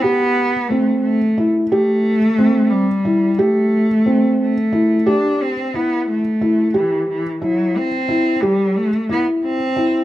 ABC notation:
X:1
M:5/8
L:1/16
Q:1/4=90
K:Ador
V:1 name="Felt piano"
G4 C4 E2 | G4 C4 E2 | G4 C4 E2 | G4 E4 E2 |
G4 E4 E2 | G4 E4 E2 |]
V:2 name="Cello"
B,4 A,2 A,3 z | A,6 G,4 | A,6 A,4 | D2 C2 B,2 A,4 |
E,2 E,2 F,2 C4 | G,2 A,2 B,2 C4 |]